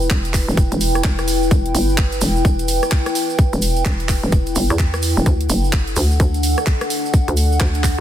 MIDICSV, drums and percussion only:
0, 0, Header, 1, 2, 480
1, 0, Start_track
1, 0, Key_signature, 1, "minor"
1, 0, Tempo, 468750
1, 1548, Time_signature, 4, 2, 24, 8
1, 8194, End_track
2, 0, Start_track
2, 0, Title_t, "Drums"
2, 18, Note_on_c, 9, 82, 40
2, 105, Note_on_c, 9, 39, 125
2, 108, Note_on_c, 9, 36, 122
2, 115, Note_off_c, 9, 82, 0
2, 115, Note_on_c, 9, 82, 56
2, 207, Note_off_c, 9, 39, 0
2, 210, Note_off_c, 9, 36, 0
2, 217, Note_off_c, 9, 82, 0
2, 256, Note_on_c, 9, 42, 52
2, 261, Note_on_c, 9, 82, 36
2, 345, Note_on_c, 9, 39, 66
2, 348, Note_on_c, 9, 36, 64
2, 348, Note_on_c, 9, 46, 96
2, 349, Note_off_c, 9, 82, 0
2, 349, Note_on_c, 9, 82, 85
2, 358, Note_off_c, 9, 42, 0
2, 448, Note_off_c, 9, 39, 0
2, 450, Note_off_c, 9, 36, 0
2, 450, Note_off_c, 9, 46, 0
2, 452, Note_off_c, 9, 82, 0
2, 502, Note_on_c, 9, 82, 41
2, 588, Note_on_c, 9, 36, 122
2, 588, Note_on_c, 9, 42, 78
2, 595, Note_off_c, 9, 82, 0
2, 595, Note_on_c, 9, 82, 61
2, 690, Note_off_c, 9, 36, 0
2, 690, Note_off_c, 9, 42, 0
2, 697, Note_off_c, 9, 82, 0
2, 735, Note_on_c, 9, 82, 37
2, 736, Note_on_c, 9, 42, 55
2, 826, Note_off_c, 9, 82, 0
2, 826, Note_on_c, 9, 82, 91
2, 828, Note_on_c, 9, 46, 111
2, 839, Note_off_c, 9, 42, 0
2, 929, Note_off_c, 9, 82, 0
2, 930, Note_off_c, 9, 46, 0
2, 976, Note_on_c, 9, 37, 58
2, 976, Note_on_c, 9, 42, 36
2, 976, Note_on_c, 9, 82, 43
2, 1065, Note_on_c, 9, 39, 126
2, 1068, Note_off_c, 9, 42, 0
2, 1068, Note_on_c, 9, 36, 126
2, 1068, Note_on_c, 9, 42, 81
2, 1077, Note_off_c, 9, 82, 0
2, 1077, Note_on_c, 9, 82, 49
2, 1079, Note_off_c, 9, 37, 0
2, 1168, Note_off_c, 9, 39, 0
2, 1170, Note_off_c, 9, 36, 0
2, 1171, Note_off_c, 9, 42, 0
2, 1179, Note_off_c, 9, 82, 0
2, 1211, Note_on_c, 9, 82, 39
2, 1216, Note_on_c, 9, 37, 63
2, 1216, Note_on_c, 9, 42, 53
2, 1308, Note_on_c, 9, 46, 94
2, 1309, Note_off_c, 9, 82, 0
2, 1309, Note_on_c, 9, 82, 94
2, 1319, Note_off_c, 9, 37, 0
2, 1319, Note_off_c, 9, 42, 0
2, 1410, Note_off_c, 9, 46, 0
2, 1412, Note_off_c, 9, 82, 0
2, 1459, Note_on_c, 9, 82, 43
2, 1548, Note_off_c, 9, 82, 0
2, 1548, Note_on_c, 9, 36, 125
2, 1548, Note_on_c, 9, 42, 77
2, 1548, Note_on_c, 9, 82, 50
2, 1650, Note_off_c, 9, 36, 0
2, 1650, Note_off_c, 9, 42, 0
2, 1650, Note_off_c, 9, 82, 0
2, 1696, Note_on_c, 9, 42, 52
2, 1788, Note_on_c, 9, 46, 109
2, 1793, Note_on_c, 9, 82, 85
2, 1798, Note_off_c, 9, 42, 0
2, 1890, Note_off_c, 9, 46, 0
2, 1896, Note_off_c, 9, 82, 0
2, 1936, Note_on_c, 9, 82, 41
2, 2025, Note_on_c, 9, 39, 122
2, 2026, Note_off_c, 9, 82, 0
2, 2026, Note_on_c, 9, 82, 50
2, 2028, Note_on_c, 9, 36, 123
2, 2028, Note_on_c, 9, 42, 79
2, 2128, Note_off_c, 9, 39, 0
2, 2129, Note_off_c, 9, 82, 0
2, 2130, Note_off_c, 9, 36, 0
2, 2130, Note_off_c, 9, 42, 0
2, 2172, Note_on_c, 9, 82, 41
2, 2176, Note_on_c, 9, 42, 52
2, 2263, Note_off_c, 9, 82, 0
2, 2263, Note_on_c, 9, 82, 100
2, 2268, Note_on_c, 9, 46, 98
2, 2279, Note_off_c, 9, 42, 0
2, 2366, Note_off_c, 9, 82, 0
2, 2370, Note_off_c, 9, 46, 0
2, 2420, Note_on_c, 9, 82, 43
2, 2508, Note_on_c, 9, 36, 123
2, 2508, Note_on_c, 9, 42, 76
2, 2514, Note_off_c, 9, 82, 0
2, 2514, Note_on_c, 9, 82, 55
2, 2610, Note_off_c, 9, 36, 0
2, 2610, Note_off_c, 9, 42, 0
2, 2616, Note_off_c, 9, 82, 0
2, 2653, Note_on_c, 9, 82, 41
2, 2656, Note_on_c, 9, 42, 51
2, 2746, Note_off_c, 9, 82, 0
2, 2746, Note_on_c, 9, 82, 95
2, 2748, Note_on_c, 9, 46, 115
2, 2758, Note_off_c, 9, 42, 0
2, 2849, Note_off_c, 9, 82, 0
2, 2850, Note_off_c, 9, 46, 0
2, 2894, Note_on_c, 9, 82, 42
2, 2896, Note_on_c, 9, 37, 59
2, 2896, Note_on_c, 9, 42, 35
2, 2979, Note_off_c, 9, 82, 0
2, 2979, Note_on_c, 9, 82, 61
2, 2985, Note_on_c, 9, 39, 121
2, 2988, Note_off_c, 9, 42, 0
2, 2988, Note_on_c, 9, 36, 124
2, 2988, Note_on_c, 9, 42, 77
2, 2999, Note_off_c, 9, 37, 0
2, 3081, Note_off_c, 9, 82, 0
2, 3087, Note_off_c, 9, 39, 0
2, 3090, Note_off_c, 9, 36, 0
2, 3090, Note_off_c, 9, 42, 0
2, 3136, Note_on_c, 9, 37, 64
2, 3136, Note_on_c, 9, 42, 52
2, 3136, Note_on_c, 9, 82, 37
2, 3228, Note_on_c, 9, 46, 94
2, 3233, Note_off_c, 9, 82, 0
2, 3233, Note_on_c, 9, 82, 90
2, 3238, Note_off_c, 9, 37, 0
2, 3238, Note_off_c, 9, 42, 0
2, 3330, Note_off_c, 9, 46, 0
2, 3335, Note_off_c, 9, 82, 0
2, 3376, Note_on_c, 9, 82, 45
2, 3466, Note_off_c, 9, 82, 0
2, 3466, Note_on_c, 9, 82, 54
2, 3468, Note_on_c, 9, 36, 119
2, 3468, Note_on_c, 9, 42, 75
2, 3569, Note_off_c, 9, 82, 0
2, 3570, Note_off_c, 9, 36, 0
2, 3570, Note_off_c, 9, 42, 0
2, 3615, Note_on_c, 9, 82, 38
2, 3617, Note_on_c, 9, 42, 52
2, 3705, Note_off_c, 9, 82, 0
2, 3705, Note_on_c, 9, 82, 94
2, 3708, Note_on_c, 9, 46, 106
2, 3719, Note_off_c, 9, 42, 0
2, 3808, Note_off_c, 9, 82, 0
2, 3810, Note_off_c, 9, 46, 0
2, 3856, Note_on_c, 9, 42, 35
2, 3856, Note_on_c, 9, 82, 38
2, 3945, Note_on_c, 9, 39, 119
2, 3948, Note_off_c, 9, 42, 0
2, 3948, Note_on_c, 9, 36, 123
2, 3948, Note_on_c, 9, 42, 74
2, 3951, Note_off_c, 9, 82, 0
2, 3951, Note_on_c, 9, 82, 53
2, 4047, Note_off_c, 9, 39, 0
2, 4050, Note_off_c, 9, 36, 0
2, 4050, Note_off_c, 9, 42, 0
2, 4054, Note_off_c, 9, 82, 0
2, 4096, Note_on_c, 9, 42, 49
2, 4100, Note_on_c, 9, 82, 37
2, 4185, Note_off_c, 9, 82, 0
2, 4185, Note_on_c, 9, 39, 60
2, 4185, Note_on_c, 9, 82, 96
2, 4188, Note_on_c, 9, 36, 65
2, 4188, Note_on_c, 9, 46, 97
2, 4199, Note_off_c, 9, 42, 0
2, 4287, Note_off_c, 9, 82, 0
2, 4288, Note_off_c, 9, 39, 0
2, 4290, Note_off_c, 9, 36, 0
2, 4291, Note_off_c, 9, 46, 0
2, 4331, Note_on_c, 9, 82, 36
2, 4424, Note_off_c, 9, 82, 0
2, 4424, Note_on_c, 9, 82, 58
2, 4428, Note_on_c, 9, 36, 126
2, 4428, Note_on_c, 9, 42, 76
2, 4527, Note_off_c, 9, 82, 0
2, 4530, Note_off_c, 9, 36, 0
2, 4530, Note_off_c, 9, 42, 0
2, 4572, Note_on_c, 9, 82, 39
2, 4576, Note_on_c, 9, 42, 50
2, 4662, Note_off_c, 9, 82, 0
2, 4662, Note_on_c, 9, 82, 90
2, 4668, Note_on_c, 9, 46, 108
2, 4678, Note_off_c, 9, 42, 0
2, 4765, Note_off_c, 9, 82, 0
2, 4770, Note_off_c, 9, 46, 0
2, 4813, Note_on_c, 9, 82, 41
2, 4816, Note_on_c, 9, 37, 60
2, 4816, Note_on_c, 9, 42, 34
2, 4905, Note_on_c, 9, 39, 116
2, 4908, Note_off_c, 9, 42, 0
2, 4908, Note_on_c, 9, 36, 122
2, 4908, Note_on_c, 9, 42, 75
2, 4911, Note_off_c, 9, 82, 0
2, 4911, Note_on_c, 9, 82, 56
2, 4919, Note_off_c, 9, 37, 0
2, 5007, Note_off_c, 9, 39, 0
2, 5010, Note_off_c, 9, 36, 0
2, 5010, Note_off_c, 9, 42, 0
2, 5013, Note_off_c, 9, 82, 0
2, 5056, Note_on_c, 9, 37, 65
2, 5056, Note_on_c, 9, 42, 51
2, 5058, Note_on_c, 9, 82, 41
2, 5143, Note_off_c, 9, 82, 0
2, 5143, Note_on_c, 9, 82, 94
2, 5148, Note_on_c, 9, 46, 95
2, 5158, Note_off_c, 9, 37, 0
2, 5158, Note_off_c, 9, 42, 0
2, 5245, Note_off_c, 9, 82, 0
2, 5250, Note_off_c, 9, 46, 0
2, 5293, Note_on_c, 9, 82, 41
2, 5388, Note_off_c, 9, 82, 0
2, 5388, Note_on_c, 9, 36, 118
2, 5388, Note_on_c, 9, 42, 75
2, 5388, Note_on_c, 9, 82, 49
2, 5490, Note_off_c, 9, 36, 0
2, 5490, Note_off_c, 9, 42, 0
2, 5490, Note_off_c, 9, 82, 0
2, 5536, Note_on_c, 9, 42, 52
2, 5625, Note_on_c, 9, 82, 93
2, 5627, Note_on_c, 9, 46, 105
2, 5638, Note_off_c, 9, 42, 0
2, 5728, Note_off_c, 9, 82, 0
2, 5730, Note_off_c, 9, 46, 0
2, 5777, Note_on_c, 9, 82, 36
2, 5865, Note_on_c, 9, 39, 113
2, 5868, Note_on_c, 9, 36, 117
2, 5868, Note_on_c, 9, 42, 77
2, 5880, Note_off_c, 9, 82, 0
2, 5967, Note_off_c, 9, 39, 0
2, 5970, Note_off_c, 9, 36, 0
2, 5970, Note_off_c, 9, 42, 0
2, 6016, Note_on_c, 9, 42, 50
2, 6020, Note_on_c, 9, 82, 34
2, 6102, Note_off_c, 9, 82, 0
2, 6102, Note_on_c, 9, 82, 91
2, 6108, Note_on_c, 9, 46, 92
2, 6118, Note_off_c, 9, 42, 0
2, 6204, Note_off_c, 9, 82, 0
2, 6210, Note_off_c, 9, 46, 0
2, 6256, Note_on_c, 9, 82, 38
2, 6348, Note_on_c, 9, 36, 121
2, 6348, Note_on_c, 9, 42, 75
2, 6351, Note_off_c, 9, 82, 0
2, 6351, Note_on_c, 9, 82, 55
2, 6450, Note_off_c, 9, 36, 0
2, 6450, Note_off_c, 9, 42, 0
2, 6454, Note_off_c, 9, 82, 0
2, 6496, Note_on_c, 9, 42, 50
2, 6498, Note_on_c, 9, 82, 35
2, 6588, Note_off_c, 9, 82, 0
2, 6588, Note_on_c, 9, 46, 105
2, 6588, Note_on_c, 9, 82, 84
2, 6598, Note_off_c, 9, 42, 0
2, 6690, Note_off_c, 9, 46, 0
2, 6691, Note_off_c, 9, 82, 0
2, 6736, Note_on_c, 9, 37, 63
2, 6736, Note_on_c, 9, 42, 35
2, 6738, Note_on_c, 9, 82, 37
2, 6825, Note_on_c, 9, 39, 113
2, 6828, Note_off_c, 9, 42, 0
2, 6828, Note_off_c, 9, 82, 0
2, 6828, Note_on_c, 9, 36, 123
2, 6828, Note_on_c, 9, 42, 73
2, 6828, Note_on_c, 9, 82, 49
2, 6838, Note_off_c, 9, 37, 0
2, 6927, Note_off_c, 9, 39, 0
2, 6930, Note_off_c, 9, 36, 0
2, 6930, Note_off_c, 9, 42, 0
2, 6931, Note_off_c, 9, 82, 0
2, 6976, Note_on_c, 9, 37, 69
2, 6976, Note_on_c, 9, 42, 50
2, 6981, Note_on_c, 9, 82, 35
2, 7068, Note_on_c, 9, 46, 96
2, 7071, Note_off_c, 9, 82, 0
2, 7071, Note_on_c, 9, 82, 90
2, 7079, Note_off_c, 9, 37, 0
2, 7079, Note_off_c, 9, 42, 0
2, 7171, Note_off_c, 9, 46, 0
2, 7173, Note_off_c, 9, 82, 0
2, 7223, Note_on_c, 9, 82, 41
2, 7308, Note_on_c, 9, 36, 112
2, 7308, Note_on_c, 9, 42, 79
2, 7309, Note_off_c, 9, 82, 0
2, 7309, Note_on_c, 9, 82, 53
2, 7410, Note_off_c, 9, 36, 0
2, 7411, Note_off_c, 9, 42, 0
2, 7412, Note_off_c, 9, 82, 0
2, 7456, Note_on_c, 9, 42, 53
2, 7544, Note_on_c, 9, 82, 88
2, 7548, Note_on_c, 9, 46, 102
2, 7559, Note_off_c, 9, 42, 0
2, 7647, Note_off_c, 9, 82, 0
2, 7650, Note_off_c, 9, 46, 0
2, 7701, Note_on_c, 9, 82, 38
2, 7785, Note_on_c, 9, 39, 115
2, 7788, Note_on_c, 9, 36, 113
2, 7788, Note_on_c, 9, 42, 79
2, 7803, Note_off_c, 9, 82, 0
2, 7887, Note_off_c, 9, 39, 0
2, 7890, Note_off_c, 9, 36, 0
2, 7890, Note_off_c, 9, 42, 0
2, 7929, Note_on_c, 9, 82, 37
2, 7936, Note_on_c, 9, 42, 50
2, 8025, Note_on_c, 9, 39, 57
2, 8028, Note_off_c, 9, 82, 0
2, 8028, Note_on_c, 9, 36, 60
2, 8028, Note_on_c, 9, 46, 90
2, 8028, Note_on_c, 9, 82, 89
2, 8038, Note_off_c, 9, 42, 0
2, 8127, Note_off_c, 9, 39, 0
2, 8130, Note_off_c, 9, 36, 0
2, 8130, Note_off_c, 9, 46, 0
2, 8131, Note_off_c, 9, 82, 0
2, 8194, End_track
0, 0, End_of_file